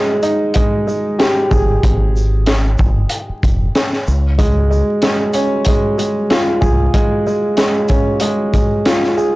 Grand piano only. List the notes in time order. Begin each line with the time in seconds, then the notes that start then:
Already playing: G#3
0.23 D#4
0.56 G#3
0.87 G#3
1.19 G4
1.51 G#4
4.38 G#3
4.70 G#3
5.03 G#3
5.34 C#4
5.68 G#3
5.98 G#3
6.30 F4
6.61 G#4
6.94 G#3
7.27 G#3
7.57 G#3
7.90 C#4
8.21 G#3
8.54 G#3
8.86 F4
9.17 G#4